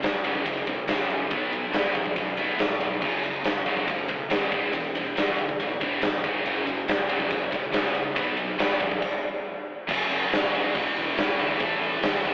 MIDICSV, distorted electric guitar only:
0, 0, Header, 1, 2, 480
1, 0, Start_track
1, 0, Key_signature, 3, "minor"
1, 0, Tempo, 428571
1, 1468, Time_signature, 4, 2, 24, 8
1, 13820, End_track
2, 0, Start_track
2, 0, Title_t, "Distorted electric guitar"
2, 0, Program_c, 0, 30
2, 33, Note_on_c, 0, 42, 81
2, 36, Note_on_c, 0, 49, 85
2, 250, Note_off_c, 0, 42, 0
2, 251, Note_off_c, 0, 49, 0
2, 268, Note_on_c, 0, 42, 82
2, 276, Note_on_c, 0, 49, 85
2, 278, Note_on_c, 0, 54, 101
2, 496, Note_off_c, 0, 42, 0
2, 500, Note_off_c, 0, 49, 0
2, 501, Note_off_c, 0, 54, 0
2, 512, Note_on_c, 0, 42, 81
2, 513, Note_on_c, 0, 49, 90
2, 728, Note_off_c, 0, 42, 0
2, 728, Note_off_c, 0, 49, 0
2, 754, Note_on_c, 0, 42, 70
2, 757, Note_on_c, 0, 49, 70
2, 968, Note_off_c, 0, 42, 0
2, 970, Note_off_c, 0, 49, 0
2, 980, Note_on_c, 0, 42, 64
2, 982, Note_on_c, 0, 49, 79
2, 987, Note_on_c, 0, 54, 72
2, 1206, Note_off_c, 0, 42, 0
2, 1211, Note_off_c, 0, 49, 0
2, 1214, Note_off_c, 0, 54, 0
2, 1219, Note_on_c, 0, 42, 68
2, 1228, Note_on_c, 0, 49, 84
2, 1439, Note_off_c, 0, 42, 0
2, 1444, Note_off_c, 0, 49, 0
2, 1458, Note_on_c, 0, 47, 95
2, 1461, Note_on_c, 0, 54, 108
2, 1465, Note_on_c, 0, 59, 100
2, 1688, Note_off_c, 0, 47, 0
2, 1690, Note_off_c, 0, 54, 0
2, 1692, Note_off_c, 0, 59, 0
2, 1701, Note_on_c, 0, 47, 80
2, 1704, Note_on_c, 0, 54, 76
2, 1919, Note_off_c, 0, 47, 0
2, 1921, Note_off_c, 0, 54, 0
2, 1932, Note_on_c, 0, 47, 83
2, 1936, Note_on_c, 0, 54, 94
2, 1944, Note_on_c, 0, 59, 88
2, 2164, Note_off_c, 0, 47, 0
2, 2166, Note_off_c, 0, 54, 0
2, 2170, Note_off_c, 0, 59, 0
2, 2175, Note_on_c, 0, 47, 68
2, 2181, Note_on_c, 0, 54, 73
2, 2396, Note_off_c, 0, 47, 0
2, 2398, Note_off_c, 0, 54, 0
2, 2420, Note_on_c, 0, 47, 82
2, 2420, Note_on_c, 0, 54, 88
2, 2637, Note_off_c, 0, 47, 0
2, 2637, Note_off_c, 0, 54, 0
2, 2661, Note_on_c, 0, 47, 98
2, 2664, Note_on_c, 0, 59, 98
2, 2666, Note_on_c, 0, 54, 99
2, 2886, Note_off_c, 0, 54, 0
2, 2887, Note_off_c, 0, 47, 0
2, 2889, Note_off_c, 0, 59, 0
2, 2899, Note_on_c, 0, 47, 61
2, 2899, Note_on_c, 0, 54, 70
2, 3116, Note_off_c, 0, 47, 0
2, 3117, Note_off_c, 0, 54, 0
2, 3137, Note_on_c, 0, 47, 75
2, 3148, Note_on_c, 0, 54, 73
2, 3355, Note_off_c, 0, 47, 0
2, 3361, Note_off_c, 0, 54, 0
2, 3378, Note_on_c, 0, 49, 93
2, 3381, Note_on_c, 0, 42, 94
2, 3385, Note_on_c, 0, 54, 96
2, 3605, Note_off_c, 0, 49, 0
2, 3606, Note_off_c, 0, 42, 0
2, 3609, Note_off_c, 0, 54, 0
2, 3619, Note_on_c, 0, 42, 85
2, 3620, Note_on_c, 0, 49, 89
2, 3836, Note_off_c, 0, 42, 0
2, 3836, Note_off_c, 0, 49, 0
2, 3864, Note_on_c, 0, 42, 80
2, 3864, Note_on_c, 0, 49, 76
2, 4078, Note_off_c, 0, 42, 0
2, 4078, Note_off_c, 0, 49, 0
2, 4110, Note_on_c, 0, 42, 88
2, 4116, Note_on_c, 0, 49, 104
2, 4117, Note_on_c, 0, 54, 93
2, 4328, Note_off_c, 0, 42, 0
2, 4334, Note_off_c, 0, 49, 0
2, 4334, Note_off_c, 0, 54, 0
2, 4342, Note_on_c, 0, 42, 81
2, 4347, Note_on_c, 0, 49, 78
2, 4557, Note_off_c, 0, 42, 0
2, 4559, Note_off_c, 0, 49, 0
2, 4575, Note_on_c, 0, 49, 80
2, 4577, Note_on_c, 0, 42, 76
2, 4793, Note_off_c, 0, 49, 0
2, 4794, Note_off_c, 0, 42, 0
2, 4814, Note_on_c, 0, 42, 76
2, 4819, Note_on_c, 0, 54, 90
2, 4821, Note_on_c, 0, 49, 72
2, 5042, Note_off_c, 0, 42, 0
2, 5045, Note_off_c, 0, 54, 0
2, 5046, Note_off_c, 0, 49, 0
2, 5057, Note_on_c, 0, 40, 90
2, 5062, Note_on_c, 0, 47, 91
2, 5066, Note_on_c, 0, 52, 98
2, 5284, Note_off_c, 0, 40, 0
2, 5286, Note_off_c, 0, 47, 0
2, 5288, Note_off_c, 0, 52, 0
2, 5308, Note_on_c, 0, 40, 75
2, 5314, Note_on_c, 0, 47, 94
2, 5519, Note_off_c, 0, 40, 0
2, 5523, Note_off_c, 0, 47, 0
2, 5548, Note_on_c, 0, 47, 98
2, 5549, Note_on_c, 0, 40, 70
2, 5760, Note_off_c, 0, 40, 0
2, 5760, Note_off_c, 0, 47, 0
2, 5778, Note_on_c, 0, 40, 94
2, 5789, Note_on_c, 0, 47, 97
2, 5794, Note_on_c, 0, 52, 101
2, 6004, Note_off_c, 0, 40, 0
2, 6010, Note_off_c, 0, 47, 0
2, 6012, Note_off_c, 0, 52, 0
2, 6024, Note_on_c, 0, 40, 63
2, 6027, Note_on_c, 0, 47, 81
2, 6238, Note_off_c, 0, 40, 0
2, 6239, Note_off_c, 0, 47, 0
2, 6266, Note_on_c, 0, 40, 84
2, 6270, Note_on_c, 0, 47, 94
2, 6479, Note_off_c, 0, 40, 0
2, 6481, Note_off_c, 0, 47, 0
2, 6501, Note_on_c, 0, 40, 90
2, 6509, Note_on_c, 0, 47, 104
2, 6514, Note_on_c, 0, 52, 109
2, 6723, Note_off_c, 0, 40, 0
2, 6730, Note_off_c, 0, 47, 0
2, 6733, Note_off_c, 0, 52, 0
2, 6737, Note_on_c, 0, 40, 60
2, 6744, Note_on_c, 0, 47, 68
2, 6955, Note_off_c, 0, 40, 0
2, 6958, Note_off_c, 0, 47, 0
2, 6988, Note_on_c, 0, 42, 101
2, 6993, Note_on_c, 0, 49, 106
2, 6999, Note_on_c, 0, 54, 96
2, 7210, Note_off_c, 0, 42, 0
2, 7210, Note_off_c, 0, 49, 0
2, 7213, Note_off_c, 0, 54, 0
2, 7222, Note_on_c, 0, 42, 106
2, 7223, Note_on_c, 0, 49, 95
2, 7227, Note_on_c, 0, 54, 110
2, 7447, Note_off_c, 0, 42, 0
2, 7448, Note_off_c, 0, 49, 0
2, 7449, Note_off_c, 0, 54, 0
2, 7463, Note_on_c, 0, 42, 76
2, 7467, Note_on_c, 0, 49, 86
2, 7678, Note_off_c, 0, 42, 0
2, 7680, Note_off_c, 0, 49, 0
2, 7706, Note_on_c, 0, 42, 83
2, 7708, Note_on_c, 0, 49, 85
2, 7920, Note_off_c, 0, 42, 0
2, 7921, Note_off_c, 0, 49, 0
2, 7936, Note_on_c, 0, 42, 86
2, 7943, Note_on_c, 0, 54, 111
2, 7944, Note_on_c, 0, 49, 95
2, 8165, Note_off_c, 0, 42, 0
2, 8165, Note_off_c, 0, 49, 0
2, 8168, Note_off_c, 0, 54, 0
2, 8179, Note_on_c, 0, 42, 90
2, 8179, Note_on_c, 0, 49, 91
2, 8397, Note_off_c, 0, 42, 0
2, 8397, Note_off_c, 0, 49, 0
2, 8411, Note_on_c, 0, 42, 82
2, 8415, Note_on_c, 0, 49, 76
2, 8628, Note_off_c, 0, 42, 0
2, 8628, Note_off_c, 0, 49, 0
2, 8641, Note_on_c, 0, 42, 75
2, 8641, Note_on_c, 0, 49, 86
2, 8651, Note_on_c, 0, 54, 93
2, 8878, Note_off_c, 0, 42, 0
2, 8878, Note_off_c, 0, 49, 0
2, 8883, Note_off_c, 0, 54, 0
2, 8890, Note_on_c, 0, 42, 71
2, 8894, Note_on_c, 0, 49, 90
2, 9113, Note_off_c, 0, 42, 0
2, 9115, Note_off_c, 0, 49, 0
2, 9129, Note_on_c, 0, 47, 105
2, 9137, Note_on_c, 0, 54, 112
2, 9140, Note_on_c, 0, 59, 110
2, 9361, Note_off_c, 0, 54, 0
2, 9362, Note_off_c, 0, 47, 0
2, 9368, Note_off_c, 0, 59, 0
2, 9374, Note_on_c, 0, 47, 73
2, 9375, Note_on_c, 0, 54, 87
2, 9595, Note_off_c, 0, 47, 0
2, 9596, Note_off_c, 0, 54, 0
2, 9613, Note_on_c, 0, 47, 90
2, 9621, Note_on_c, 0, 54, 106
2, 9625, Note_on_c, 0, 59, 112
2, 9845, Note_off_c, 0, 47, 0
2, 9849, Note_off_c, 0, 54, 0
2, 9851, Note_off_c, 0, 59, 0
2, 9859, Note_on_c, 0, 47, 71
2, 9861, Note_on_c, 0, 54, 88
2, 10078, Note_off_c, 0, 47, 0
2, 10079, Note_off_c, 0, 54, 0
2, 11062, Note_on_c, 0, 42, 97
2, 11078, Note_on_c, 0, 49, 97
2, 11087, Note_on_c, 0, 54, 101
2, 11767, Note_off_c, 0, 54, 0
2, 11772, Note_off_c, 0, 42, 0
2, 11777, Note_off_c, 0, 49, 0
2, 11780, Note_on_c, 0, 54, 89
2, 11790, Note_on_c, 0, 49, 72
2, 11796, Note_on_c, 0, 42, 70
2, 12011, Note_off_c, 0, 54, 0
2, 12012, Note_off_c, 0, 42, 0
2, 12016, Note_off_c, 0, 49, 0
2, 12017, Note_on_c, 0, 40, 94
2, 12033, Note_on_c, 0, 47, 107
2, 12043, Note_on_c, 0, 52, 107
2, 12732, Note_off_c, 0, 40, 0
2, 12740, Note_off_c, 0, 47, 0
2, 12741, Note_off_c, 0, 52, 0
2, 12754, Note_on_c, 0, 52, 88
2, 12766, Note_on_c, 0, 47, 81
2, 12779, Note_on_c, 0, 40, 74
2, 12980, Note_off_c, 0, 52, 0
2, 12985, Note_off_c, 0, 47, 0
2, 12990, Note_on_c, 0, 45, 98
2, 12993, Note_off_c, 0, 40, 0
2, 13000, Note_on_c, 0, 52, 113
2, 13010, Note_on_c, 0, 57, 110
2, 13701, Note_off_c, 0, 45, 0
2, 13706, Note_off_c, 0, 52, 0
2, 13711, Note_off_c, 0, 57, 0
2, 13714, Note_on_c, 0, 40, 99
2, 13727, Note_on_c, 0, 47, 99
2, 13738, Note_on_c, 0, 52, 88
2, 13820, Note_off_c, 0, 40, 0
2, 13820, Note_off_c, 0, 47, 0
2, 13820, Note_off_c, 0, 52, 0
2, 13820, End_track
0, 0, End_of_file